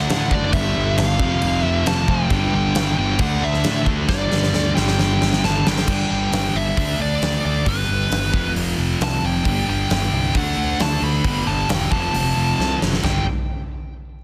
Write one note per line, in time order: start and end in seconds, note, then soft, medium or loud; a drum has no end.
0.00 0.29 D3 medium
0.00 0.30 A3 loud
0.00 0.28 D4 loud
0.00 0.33 F#5 loud
0.10 0.29 A2 medium
0.10 snare loud
0.10 crash medium
0.30 0.50 F#1 medium
0.30 0.52 D3 medium
0.30 0.52 A3 medium
0.30 0.51 D4 medium
0.30 0.44 D5 medium
0.30 kick medium
0.45 0.52 D5 medium
0.52 0.72 G1 loud
0.52 1.18 G2 loud
0.52 1.18 D3 medium
0.52 1.19 G3 loud
0.52 0.97 E5 loud
0.52 kick loud
0.52 crash medium
0.76 0.95 G1 medium
0.98 1.17 G1 loud
0.98 1.60 F5 medium
0.98 snare loud
0.98 crash medium
1.19 1.39 F1 medium
1.19 1.84 F2 loud
1.19 1.85 C3 loud
1.19 1.86 F3 loud
1.19 kick loud
1.42 1.62 F1 loud
1.42 crash medium
1.60 1.89 E5 medium
1.64 1.84 F1 medium
1.85 2.05 F1 loud
1.85 2.29 F2 medium
1.85 2.30 C3 medium
1.85 2.30 F3 medium
1.85 2.09 A5 loud
1.85 snare loud
1.85 crash medium
2.08 2.28 F1 loud
2.08 2.29 F2 medium
2.08 2.30 C3 medium
2.08 2.29 F3 medium
2.08 2.53 G5 loud
2.08 kick medium
2.30 2.50 G1 loud
2.30 2.96 G2 medium
2.30 2.96 D3 medium
2.30 2.95 G3 loud
2.30 kick loud
2.30 crash medium
2.53 2.73 G1 medium
2.53 2.95 G5 loud
2.75 2.95 G1 loud
2.75 snare loud
2.75 crash medium
2.96 3.17 G1 loud
2.96 3.19 G2 medium
2.96 3.18 D3 medium
2.96 3.18 G3 loud
2.96 3.20 G5 medium
3.19 3.39 D2 loud
3.19 3.85 D3 medium
3.19 3.86 A3 loud
3.19 3.85 D4 loud
3.19 3.43 F#5 loud
3.19 kick loud
3.19 crash medium
3.41 3.61 D2 medium
3.41 3.84 E5 medium
3.54 snare soft
3.64 3.84 A2 loud
3.64 snare loud
3.64 crash medium
3.86 4.06 D2 loud
3.86 4.08 D3 medium
3.86 4.08 A3 medium
3.86 6.79 D4 medium
3.86 kick medium
4.08 4.29 G1 loud
4.08 4.74 G2 loud
4.08 4.75 D3 medium
4.08 4.75 G3 loud
4.08 4.72 D5 medium
4.08 kick loud
4.08 snare medium
4.32 4.51 G1 medium
4.32 snare medium
4.43 snare medium
4.54 4.73 D2 loud
4.54 snare medium
4.75 4.96 G1 medium
4.75 5.41 G2 loud
4.75 5.42 D3 loud
4.75 5.43 G3 loud
4.75 5.61 G5 loud
4.75 snare medium
4.88 snare medium
4.99 5.18 G1 loud
4.99 snare medium
5.21 5.41 G1 medium
5.21 snare medium
5.33 snare medium
5.43 5.63 G1 medium
5.43 5.85 G2 medium
5.43 5.87 D3 medium
5.43 5.88 G3 medium
5.43 5.67 A5 loud
5.43 snare loud
5.64 5.86 G1 loud
5.64 5.87 G2 medium
5.64 5.87 D3 medium
5.64 5.86 G3 medium
5.64 6.10 G5 loud
5.64 snare loud
5.78 snare loud
5.87 6.05 G1 medium
5.87 6.75 G2 medium
5.87 6.76 D3 medium
5.87 6.77 G3 medium
5.87 kick medium
5.87 crash loud
6.11 6.27 G1 medium
6.11 6.57 G5 loud
6.32 6.49 G1 medium
6.32 snare loud
6.32 open hi-hat medium
6.55 6.71 G1 medium
6.55 7.01 E5 loud
6.77 6.94 D2 medium
6.77 7.65 D3 medium
6.77 7.66 A3 medium
6.77 7.67 D4 loud
6.77 kick loud
6.77 open hi-hat medium
6.99 7.16 D2 medium
6.99 7.42 D5 medium
7.22 7.39 D2 medium
7.22 snare loud
7.22 open hi-hat medium
7.45 7.61 D2 medium
7.45 7.68 D5 medium
7.66 7.83 G1 medium
7.66 8.32 G2 medium
7.66 8.33 D3 medium
7.66 8.33 G3 medium
7.66 8.53 B4 medium
7.66 kick loud
7.66 open hi-hat medium
7.89 8.06 G1 medium
8.11 8.34 G1 medium
8.11 snare loud
8.11 open hi-hat medium
8.33 8.50 F1 medium
8.33 9.44 F2 medium
8.33 9.45 C3 loud
8.33 9.45 F3 medium
8.33 kick loud
8.56 8.73 F1 medium
8.56 open hi-hat medium
8.78 8.95 F1 medium
9.01 9.18 C2 medium
9.01 9.25 A5 medium
9.01 snare loud
9.01 open hi-hat medium
9.23 9.40 F1 medium
9.23 9.69 G5 medium
9.45 9.62 G1 loud
9.45 10.33 G2 medium
9.45 10.33 D3 medium
9.45 10.35 G3 medium
9.45 kick loud
9.45 open hi-hat medium
9.68 9.85 G1 medium
9.68 10.36 G5 medium
9.90 10.07 G1 loud
9.90 snare loud
9.90 open hi-hat medium
10.12 10.29 C2 medium
10.35 10.52 D2 loud
10.35 11.23 D3 medium
10.35 11.24 A3 loud
10.35 11.24 D4 loud
10.35 10.81 F#5 medium
10.35 kick loud
10.35 open hi-hat medium
10.57 10.74 D2 medium
10.80 10.97 D2 medium
10.80 11.04 A5 medium
10.80 snare loud
10.80 open hi-hat medium
11.02 11.19 D2 medium
11.02 11.49 B5 loud
11.24 11.41 G1 loud
11.24 11.90 G2 medium
11.24 11.91 D3 loud
11.24 11.91 G3 loud
11.24 kick loud
11.24 open hi-hat medium
11.47 11.64 G1 medium
11.47 11.70 A5 medium
11.69 11.86 E1 medium
11.69 11.91 G5 medium
11.69 snare loud
11.69 open hi-hat medium
11.91 12.09 F1 medium
11.91 13.02 F2 medium
11.91 13.03 C3 loud
11.91 13.04 F3 loud
11.91 12.77 A5 medium
11.91 kick loud
12.14 12.31 F1 loud
12.14 open hi-hat medium
12.36 12.53 F1 loud
12.59 12.76 C2 loud
12.59 snare medium
12.81 12.98 F#1 medium
12.81 snare loud
12.93 snare medium
13.04 13.25 G1 loud
13.04 13.22 G2 medium
13.04 13.22 D3 medium
13.04 13.23 G3 loud
13.04 13.25 G5 medium
13.04 snare loud
13.04 floor tom loud
13.04 china medium